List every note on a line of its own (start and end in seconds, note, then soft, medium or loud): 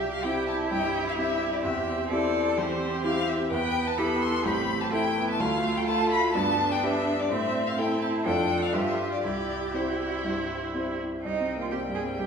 0.00 0.23 C2 soft
0.00 0.23 G4 soft
0.00 0.25 G4 medium
0.00 0.12 E5 medium
0.13 0.25 F5 medium
0.23 0.67 C4 soft
0.23 1.65 E4 medium
0.23 0.67 E4 soft
0.23 0.70 G4 soft
0.23 0.68 G4 soft
0.23 0.47 G5 medium
0.48 0.56 A5 medium
0.70 1.46 G2 soft
0.70 1.17 G4 soft
0.70 1.06 G5 medium
1.08 1.12 F5 medium
1.18 1.60 C4 soft
1.18 1.61 E4 soft
1.18 1.65 G4 soft
1.18 1.61 G4 soft
1.18 1.55 E5 medium
1.53 1.63 D5 medium
1.63 2.10 E2 medium
1.63 2.56 C4 soft
1.63 2.09 G4 medium
1.63 2.10 E5 medium
2.10 2.54 C4 soft
2.10 2.54 E4 soft
2.10 2.54 G4 soft
2.10 2.59 A4 medium
2.10 2.60 D5 medium
2.57 3.33 E3 soft
2.57 3.49 C4 medium
2.57 3.50 G4 medium
2.57 3.04 C5 medium
3.04 3.47 C4 soft
3.04 3.47 E4 soft
3.04 3.48 G4 soft
3.04 3.30 F5 medium
3.28 3.50 E5 medium
3.51 3.96 E2 soft
3.51 3.97 B3 medium
3.51 3.99 B4 medium
3.51 3.89 G5 medium
3.87 4.00 A5 medium
3.97 4.46 B3 medium
3.97 4.41 E4 soft
3.97 4.41 G4 soft
3.97 4.45 A4 medium
3.97 4.23 B5 medium
4.22 4.45 C6 medium
4.44 4.91 A1 medium
4.44 4.91 C4 medium
4.44 4.94 G4 medium
4.44 4.83 B5 medium
4.81 4.92 A5 medium
4.92 5.00 C4 medium
4.92 5.36 E4 soft
4.92 5.39 E4 medium
4.92 5.36 A4 soft
4.92 5.27 G5 medium
5.16 5.41 B3 medium
5.30 5.42 A5 medium
5.39 5.86 D2 medium
5.39 5.87 A3 medium
5.39 6.36 F4 medium
5.39 5.79 F5 medium
5.77 5.86 G5 medium
5.87 6.36 A3 medium
5.87 6.31 F4 soft
5.87 6.31 A4 soft
5.87 6.10 A5 medium
6.11 6.34 B5 medium
6.34 6.81 G2 medium
6.34 7.30 B3 medium
6.34 7.30 D4 medium
6.34 6.73 A5 medium
6.72 6.85 G5 medium
6.83 7.26 G4 soft
6.83 7.26 B4 soft
6.83 7.21 E5 medium
7.20 7.33 D5 medium
7.30 7.76 A2 medium
7.30 8.23 C4 medium
7.30 7.77 C4 medium
7.30 7.68 E5 medium
7.67 7.80 F5 medium
7.78 8.21 E4 soft
7.78 8.27 E4 medium
7.78 8.22 A4 soft
7.78 8.01 G5 medium
8.02 8.10 A5 medium
8.26 8.72 F2 medium
8.26 8.76 D4 soft
8.26 8.70 D4 soft
8.26 8.70 F4 soft
8.26 8.74 A4 medium
8.26 8.70 A4 soft
8.26 8.64 G5 medium
8.62 8.74 F5 medium
8.73 9.22 G2 soft
8.73 9.20 D4 soft
8.73 9.20 F4 soft
8.73 9.25 F4 soft
8.73 9.23 G4 medium
8.73 9.20 B4 soft
8.73 9.10 E5 medium
9.12 9.23 D5 medium
9.24 9.73 C2 soft
9.24 9.73 E4 soft
9.24 10.95 G4 medium
9.24 9.76 D5 medium
9.73 10.20 C4 soft
9.73 11.00 E4 soft
9.73 10.20 E4 soft
9.73 10.99 C5 medium
9.73 10.20 C5 soft
10.24 11.04 G2 soft
10.74 11.20 C4 soft
10.74 11.20 E4 soft
10.74 11.20 C5 soft
11.23 12.16 C2 soft
11.23 12.27 G3 soft
11.23 11.57 D#4 medium
11.23 12.27 G5 soft
11.40 11.66 C4 soft
11.56 11.72 A#3 soft
11.61 11.66 F4 soft
11.71 11.97 C4 soft
11.71 11.79 G4 soft
11.88 12.13 G2 soft
11.95 12.03 G#4 soft
12.03 12.27 C4 soft
12.19 12.27 G2 soft
12.19 12.27 G4 medium